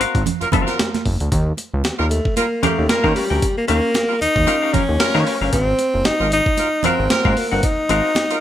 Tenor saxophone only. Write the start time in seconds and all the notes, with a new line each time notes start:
2.10 A3
2.37 A#3
2.63 A3
2.89 A#3
3.15 G3
3.57 A#3
3.67 A#3
4.21 D#4
4.74 C#4
5.53 C4
6.06 D#4
6.33 D#4
6.86 C4
7.39 A#3
7.64 D#4